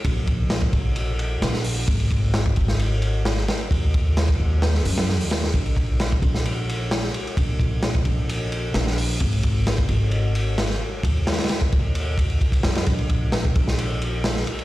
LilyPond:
<<
  \new Staff \with { instrumentName = "Upright bass" } { \clef bass \time 4/4 \key ees \dorian \tempo 4 = 131 bes,,4. bes,,4. bes,,4 | aes,,4. aes,,2 r8 | ees,4. ees,4 ges,8. ees,8. | bes,,4. bes,,2 r8 |
bes,,4. bes,,4. bes,,4 | aes,,4. aes,,2 r8 | ees,4. ees,4. r8 ges,8 | bes,,4. bes,,2 r8 | }
  \new DrumStaff \with { instrumentName = "Drums" } \drummode { \time 4/4 <bd cymr>8 <bd cymr>8 <cymr sn>16 bd16 <bd cymr>8 cymr8 cymr8 <cymr sn>16 sn16 hho8 | <bd cymr>16 cymr16 <bd cymr>8 <cymr sn>16 bd16 <bd cymr>16 sn16 cymr8 cymr8 <cymr sn>16 sn16 <cymr sn>16 cymr16 | <bd cymr>8 <bd cymr>8 <cymr sn>16 bd8. <cymr sn>16 sn16 hho16 <cymr sn>16 sn16 hho16 <cymr sn>16 sn16 | <bd cymr>16 cymr16 <bd cymr>8 <cymr sn>16 bd16 <bd cymr>16 sn16 cymr8 cymr8 <cymr sn>16 sn16 cymr16 cymr16 |
<bd cymr>8 <bd cymr>8 <cymr sn>16 bd16 <bd cymr>8 cymr8 cymr8 <cymr sn>16 sn16 hho8 | <bd cymr>16 cymr16 <bd cymr>8 <cymr sn>16 bd16 cymr8 cymr8 cymr8 <cymr sn>16 sn8. | <bd cymr>8 <cymr sn>32 <cymr sn>32 <cymr sn>32 <cymr sn>32 <cymr sn>16 bd16 <bd cymr>8 cymr8 <bd cymr>16 cymr16 <bd cymr>16 <bd cymr>16 <cymr sn>16 <cymr sn>16 | <bd cymr>16 cymr16 <bd cymr>8 <cymr sn>16 bd16 <bd cymr>16 sn16 cymr8 cymr8 <cymr sn>16 sn16 cymr16 cymr16 | }
>>